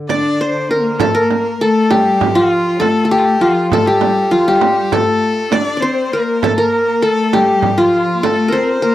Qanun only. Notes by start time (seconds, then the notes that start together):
Already playing: D4
0.10 D5
0.41 C5
0.71 A#4
1.00 A4
1.15 A#4
1.61 A4
1.91 G4
2.35 F4
2.80 A4
3.05 A4
3.11 G4
3.41 F4
3.73 A4
3.87 G4
4.31 F4
4.48 G4
4.93 A4
5.52 D5
5.77 D5
5.82 C5
6.13 A#4
6.44 A4
6.58 A#4
7.02 A4
7.33 G4
7.78 F4
8.23 A4
8.48 A#4
8.52 C5
8.82 A#4